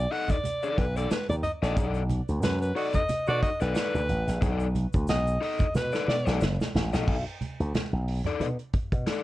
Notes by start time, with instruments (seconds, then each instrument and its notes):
Already playing: alto saxophone D5
0.11 overdriven electric guitar D#4 A4 D#5, alto saxophone F#5, open hi-hat
0.28 alto saxophone D5, kick, closed hi-hat, low conga, shaker
0.44 closed hi-hat, high conga, shaker
0.63 overdriven electric guitar D#4 A4 D5, shaker
0.78 slap bass B1, alto saxophone B4, kick, closed hi-hat
0.97 overdriven electric guitar D#4 A4 D5, alto saxophone D5, closed hi-hat, shaker
1.11 alto saxophone B4, snare, closed hi-hat, muted conga, shaker
1.29 slap bass D#2, alto saxophone D5, closed hi-hat, high conga, shaker
1.43 alto saxophone D#5, closed hi-hat, muted conga, low conga
1.62 slap bass A#1, overdriven electric guitar D#4 A4 D#5, alto saxophone D5, snare, closed hi-hat, shaker
1.77 slap bass B1, overdriven electric guitar D#4 A4 D5, kick, closed hi-hat, shaker
1.94 closed hi-hat, shaker
2.10 closed hi-hat, high conga, shaker
2.28 slap bass D2, closed hi-hat, shaker
2.43 slap bass F#2, alto saxophone B4, snare, closed hi-hat, muted conga, high conga, shaker
2.61 alto saxophone B4, shaker
2.75 overdriven electric guitar D#4 A4 D#5, tenor saxophone F#4, alto saxophone D5, open hi-hat
2.93 alto saxophone D#5, kick, closed hi-hat, low conga, shaker
3.09 muted slap bass stroke, closed hi-hat, high conga, shaker
3.26 slap bass B2, overdriven electric guitar D#4 A4 D5, tenor saxophone F#4, alto saxophone D5, shaker
3.42 alto saxophone D#5, kick, closed hi-hat, muted conga
3.60 slap bass B1, overdriven electric guitar D#4 A4 D5, alto saxophone B4, closed hi-hat, shaker
3.75 overdriven electric guitar D#4 A4 D5, snare, closed hi-hat, shaker
3.94 slap bass D2, high conga, shaker
4.09 slap bass A1, closed hi-hat, low conga
4.28 slap bass A#1, snare, closed hi-hat, shaker
4.41 slap bass B1, overdriven electric guitar D#4 A4 D5, kick, closed hi-hat, muted conga, low conga, shaker
4.60 shaker
4.75 closed hi-hat, high conga, shaker
4.93 slap bass D2, kick, closed hi-hat, shaker
5.07 slap bass B1, alto saxophone D#5, snare, closed hi-hat, high conga, shaker
5.27 shaker
5.41 overdriven electric guitar D#4 A4 D#5, alto saxophone D#5, open hi-hat, muted conga
5.59 kick, closed hi-hat, low conga, shaker
5.75 slap bass B2, alto saxophone B4, snare, muted conga, high conga, shaker
5.93 overdriven electric guitar D#4 A4 D5, snare, shaker
6.08 slap bass B2, alto saxophone D5, snare
6.26 slap bass B1, overdriven electric guitar D#4 A4 D5, snare, shaker
6.41 slap bass F#1, snare, muted conga, shaker
6.60 snare, high conga, shaker
6.74 slap bass A1, snare, low conga
6.93 slap bass A#1, overdriven electric guitar D#4 A4 D#5, snare, shaker
7.08 slap bass B1, kick, crash
7.27 closed hi-hat
7.41 closed hi-hat, high conga
7.60 slap bass D2, closed hi-hat
7.75 muted slap bass stroke, snare, closed hi-hat, muted conga, high conga
7.93 slap bass B1
8.08 open hi-hat
8.24 overdriven electric guitar D#4 A4 D5, closed hi-hat, low conga
8.40 slap bass B2, closed hi-hat, high conga
8.59 closed hi-hat
8.73 muted slap bass stroke, kick, closed hi-hat
8.92 slap bass B2, kick, closed hi-hat
9.06 overdriven electric guitar D#4 A4 D5, snare, closed hi-hat